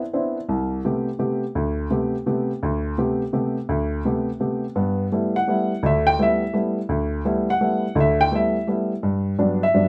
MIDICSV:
0, 0, Header, 1, 2, 480
1, 0, Start_track
1, 0, Tempo, 356083
1, 648, Time_signature, 3, 2, 24, 8
1, 13322, End_track
2, 0, Start_track
2, 0, Title_t, "Upright piano"
2, 0, Program_c, 0, 0
2, 179, Note_on_c, 0, 59, 46
2, 180, Note_on_c, 0, 60, 42
2, 183, Note_on_c, 0, 62, 40
2, 189, Note_on_c, 0, 64, 55
2, 492, Note_off_c, 0, 59, 0
2, 492, Note_off_c, 0, 60, 0
2, 494, Note_off_c, 0, 62, 0
2, 497, Note_off_c, 0, 64, 0
2, 656, Note_on_c, 0, 36, 62
2, 1066, Note_off_c, 0, 36, 0
2, 1141, Note_on_c, 0, 57, 43
2, 1143, Note_on_c, 0, 48, 51
2, 1151, Note_on_c, 0, 59, 44
2, 1151, Note_on_c, 0, 67, 55
2, 1453, Note_off_c, 0, 57, 0
2, 1454, Note_off_c, 0, 48, 0
2, 1458, Note_off_c, 0, 59, 0
2, 1458, Note_off_c, 0, 67, 0
2, 1604, Note_on_c, 0, 48, 47
2, 1604, Note_on_c, 0, 57, 41
2, 1608, Note_on_c, 0, 59, 43
2, 1609, Note_on_c, 0, 67, 54
2, 1925, Note_off_c, 0, 48, 0
2, 1925, Note_off_c, 0, 57, 0
2, 1927, Note_off_c, 0, 59, 0
2, 1927, Note_off_c, 0, 67, 0
2, 2094, Note_on_c, 0, 38, 62
2, 2505, Note_off_c, 0, 38, 0
2, 2568, Note_on_c, 0, 48, 54
2, 2570, Note_on_c, 0, 57, 45
2, 2576, Note_on_c, 0, 59, 43
2, 2583, Note_on_c, 0, 67, 61
2, 2887, Note_off_c, 0, 48, 0
2, 2888, Note_off_c, 0, 57, 0
2, 2891, Note_off_c, 0, 59, 0
2, 2894, Note_off_c, 0, 67, 0
2, 3051, Note_on_c, 0, 48, 54
2, 3054, Note_on_c, 0, 59, 50
2, 3056, Note_on_c, 0, 57, 43
2, 3059, Note_on_c, 0, 67, 54
2, 3368, Note_off_c, 0, 48, 0
2, 3370, Note_off_c, 0, 59, 0
2, 3371, Note_off_c, 0, 57, 0
2, 3373, Note_off_c, 0, 67, 0
2, 3541, Note_on_c, 0, 38, 64
2, 3949, Note_off_c, 0, 38, 0
2, 4017, Note_on_c, 0, 48, 51
2, 4018, Note_on_c, 0, 57, 45
2, 4022, Note_on_c, 0, 59, 50
2, 4026, Note_on_c, 0, 67, 55
2, 4332, Note_off_c, 0, 48, 0
2, 4332, Note_off_c, 0, 57, 0
2, 4334, Note_off_c, 0, 59, 0
2, 4336, Note_off_c, 0, 67, 0
2, 4486, Note_on_c, 0, 48, 53
2, 4493, Note_on_c, 0, 57, 46
2, 4493, Note_on_c, 0, 59, 43
2, 4497, Note_on_c, 0, 67, 54
2, 4807, Note_off_c, 0, 48, 0
2, 4810, Note_off_c, 0, 57, 0
2, 4810, Note_off_c, 0, 59, 0
2, 4812, Note_off_c, 0, 67, 0
2, 4973, Note_on_c, 0, 38, 60
2, 5385, Note_off_c, 0, 38, 0
2, 5461, Note_on_c, 0, 48, 46
2, 5463, Note_on_c, 0, 57, 47
2, 5470, Note_on_c, 0, 59, 46
2, 5476, Note_on_c, 0, 67, 57
2, 5774, Note_off_c, 0, 48, 0
2, 5775, Note_off_c, 0, 57, 0
2, 5778, Note_off_c, 0, 59, 0
2, 5781, Note_off_c, 0, 67, 0
2, 5932, Note_on_c, 0, 48, 45
2, 5932, Note_on_c, 0, 57, 41
2, 5935, Note_on_c, 0, 59, 44
2, 5939, Note_on_c, 0, 67, 53
2, 6249, Note_off_c, 0, 48, 0
2, 6250, Note_off_c, 0, 57, 0
2, 6251, Note_off_c, 0, 59, 0
2, 6253, Note_off_c, 0, 67, 0
2, 6411, Note_on_c, 0, 43, 58
2, 6414, Note_on_c, 0, 59, 63
2, 6824, Note_off_c, 0, 43, 0
2, 6826, Note_off_c, 0, 59, 0
2, 6904, Note_on_c, 0, 55, 52
2, 6905, Note_on_c, 0, 57, 49
2, 6911, Note_on_c, 0, 59, 42
2, 6916, Note_on_c, 0, 64, 53
2, 7216, Note_off_c, 0, 55, 0
2, 7217, Note_off_c, 0, 57, 0
2, 7219, Note_off_c, 0, 59, 0
2, 7222, Note_off_c, 0, 64, 0
2, 7226, Note_on_c, 0, 78, 85
2, 7380, Note_on_c, 0, 55, 50
2, 7385, Note_on_c, 0, 57, 43
2, 7388, Note_on_c, 0, 59, 44
2, 7393, Note_on_c, 0, 64, 52
2, 7694, Note_off_c, 0, 55, 0
2, 7697, Note_off_c, 0, 57, 0
2, 7698, Note_off_c, 0, 59, 0
2, 7700, Note_off_c, 0, 64, 0
2, 7824, Note_off_c, 0, 78, 0
2, 7857, Note_on_c, 0, 38, 66
2, 7860, Note_on_c, 0, 50, 60
2, 7899, Note_on_c, 0, 76, 70
2, 8168, Note_off_c, 0, 76, 0
2, 8178, Note_on_c, 0, 79, 97
2, 8268, Note_off_c, 0, 38, 0
2, 8269, Note_off_c, 0, 50, 0
2, 8339, Note_on_c, 0, 55, 50
2, 8340, Note_off_c, 0, 79, 0
2, 8342, Note_on_c, 0, 57, 47
2, 8346, Note_on_c, 0, 59, 50
2, 8346, Note_on_c, 0, 64, 58
2, 8392, Note_on_c, 0, 76, 81
2, 8654, Note_off_c, 0, 55, 0
2, 8655, Note_off_c, 0, 57, 0
2, 8657, Note_off_c, 0, 59, 0
2, 8657, Note_off_c, 0, 64, 0
2, 8806, Note_on_c, 0, 55, 52
2, 8809, Note_on_c, 0, 57, 47
2, 8811, Note_off_c, 0, 76, 0
2, 8818, Note_on_c, 0, 59, 44
2, 8821, Note_on_c, 0, 64, 53
2, 9127, Note_off_c, 0, 55, 0
2, 9129, Note_off_c, 0, 57, 0
2, 9134, Note_off_c, 0, 59, 0
2, 9135, Note_off_c, 0, 64, 0
2, 9289, Note_on_c, 0, 38, 64
2, 9704, Note_off_c, 0, 38, 0
2, 9775, Note_on_c, 0, 59, 45
2, 9776, Note_on_c, 0, 55, 57
2, 9776, Note_on_c, 0, 57, 49
2, 9783, Note_on_c, 0, 64, 59
2, 10092, Note_off_c, 0, 55, 0
2, 10092, Note_off_c, 0, 59, 0
2, 10093, Note_off_c, 0, 57, 0
2, 10096, Note_off_c, 0, 64, 0
2, 10113, Note_on_c, 0, 78, 89
2, 10254, Note_on_c, 0, 55, 49
2, 10255, Note_on_c, 0, 57, 48
2, 10262, Note_on_c, 0, 59, 42
2, 10267, Note_on_c, 0, 64, 51
2, 10572, Note_off_c, 0, 55, 0
2, 10572, Note_off_c, 0, 57, 0
2, 10575, Note_off_c, 0, 59, 0
2, 10578, Note_off_c, 0, 64, 0
2, 10708, Note_off_c, 0, 78, 0
2, 10722, Note_on_c, 0, 38, 63
2, 10725, Note_on_c, 0, 50, 62
2, 10788, Note_on_c, 0, 76, 76
2, 11053, Note_off_c, 0, 76, 0
2, 11063, Note_on_c, 0, 79, 93
2, 11140, Note_off_c, 0, 38, 0
2, 11142, Note_off_c, 0, 50, 0
2, 11211, Note_on_c, 0, 57, 46
2, 11212, Note_on_c, 0, 55, 48
2, 11219, Note_on_c, 0, 59, 42
2, 11223, Note_off_c, 0, 79, 0
2, 11225, Note_on_c, 0, 64, 52
2, 11261, Note_on_c, 0, 76, 70
2, 11530, Note_off_c, 0, 55, 0
2, 11530, Note_off_c, 0, 57, 0
2, 11534, Note_off_c, 0, 59, 0
2, 11537, Note_off_c, 0, 64, 0
2, 11685, Note_off_c, 0, 76, 0
2, 11689, Note_on_c, 0, 55, 52
2, 11697, Note_on_c, 0, 57, 43
2, 11702, Note_on_c, 0, 64, 49
2, 11703, Note_on_c, 0, 59, 43
2, 12009, Note_off_c, 0, 55, 0
2, 12013, Note_off_c, 0, 57, 0
2, 12015, Note_off_c, 0, 64, 0
2, 12016, Note_off_c, 0, 59, 0
2, 12171, Note_on_c, 0, 43, 62
2, 12584, Note_off_c, 0, 43, 0
2, 12650, Note_on_c, 0, 43, 54
2, 12654, Note_on_c, 0, 54, 44
2, 12658, Note_on_c, 0, 59, 44
2, 12661, Note_on_c, 0, 62, 57
2, 12969, Note_off_c, 0, 43, 0
2, 12971, Note_off_c, 0, 54, 0
2, 12973, Note_off_c, 0, 59, 0
2, 12974, Note_off_c, 0, 62, 0
2, 12984, Note_on_c, 0, 76, 83
2, 13130, Note_on_c, 0, 54, 45
2, 13134, Note_on_c, 0, 43, 52
2, 13137, Note_on_c, 0, 59, 45
2, 13137, Note_on_c, 0, 62, 56
2, 13322, Note_off_c, 0, 43, 0
2, 13322, Note_off_c, 0, 54, 0
2, 13322, Note_off_c, 0, 59, 0
2, 13322, Note_off_c, 0, 62, 0
2, 13322, Note_off_c, 0, 76, 0
2, 13322, End_track
0, 0, End_of_file